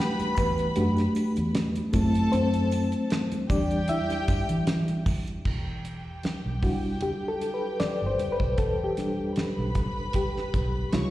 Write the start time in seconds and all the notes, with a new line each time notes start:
Already playing: G3 A3 D4 E4 F#4 G4 B4 F#5 G5 B5
0.00 snare
0.19 muted fingered electric bass stroke, closed hi-hat, high conga, muted triangle
0.35 E2 B4 B5, kick, closed hi-hat, high conga, low conga, triangle
0.58 closed hi-hat, muted triangle
0.76 F#2 A3 D4 F#4 G4, closed hi-hat, muted conga, high conga, muted triangle
0.97 snare, closed hi-hat, muted triangle
1.15 closed hi-hat, muted conga, triangle
1.36 E2, closed hi-hat, muted triangle
1.54 snare, closed hi-hat, muted conga, muted triangle
1.75 closed hi-hat, high conga, muted triangle
1.93 F#2 A3 C4 E4 A4 A5, kick, closed hi-hat, muted conga, high conga, low conga, triangle
2.14 closed hi-hat, muted triangle
2.32 F#2 C4 C5, closed hi-hat, muted conga, muted triangle
2.54 closed hi-hat, muted triangle
2.71 closed hi-hat, triangle
2.92 closed hi-hat, muted triangle
3.10 snare, closed hi-hat, muted triangle
3.32 closed hi-hat, high conga, muted triangle
3.49 E2 G3 D4 G4 D5 G5, kick, closed hi-hat, muted conga, high conga, low conga, triangle
3.71 closed hi-hat, muted triangle
3.88 E4 E5, closed hi-hat, muted conga, high conga, muted triangle
4.10 snare, closed hi-hat, muted triangle
4.28 G2, kick, closed hi-hat, triangle
4.49 E3, closed hi-hat, muted triangle
4.67 snare, closed hi-hat, muted conga, muted triangle
4.88 closed hi-hat, high conga, muted triangle
5.06 kick, open hi-hat, muted conga, high conga, low conga, triangle
5.27 closed hi-hat, muted triangle
5.45 E1 G4 G5, kick, crash, muted conga
5.84 closed hi-hat, muted conga
6.23 muted fingered electric bass stroke, snare, closed hi-hat, muted conga
6.45 B1, high conga
6.62 G3 D4 E4 F#4, kick, open hi-hat, muted conga, high conga, low conga
7.01 G4, closed hi-hat, high conga, low conga
7.28 A4
7.41 closed hi-hat, muted conga
7.54 B4
7.79 D5, muted fingered electric bass stroke, snare, closed hi-hat, muted conga
8.02 G1
8.06 C5
8.19 closed hi-hat, muted conga, high conga, low conga
8.32 B4
8.40 B1, kick
8.58 E1 A4, kick, closed hi-hat, muted conga
8.84 G4
8.97 G3 D4, snare, closed hi-hat
9.36 B4 B5, muted fingered electric bass stroke, snare, closed hi-hat, muted conga
9.57 B1, high conga
9.75 kick, closed hi-hat, high conga, low conga
10.13 G4, kick, closed hi-hat, muted conga, high conga, low conga
10.37 snare
10.54 B1, kick, closed hi-hat
10.93 C#2 C3 G3 D#4 F4 C#5 C#6, snare, closed hi-hat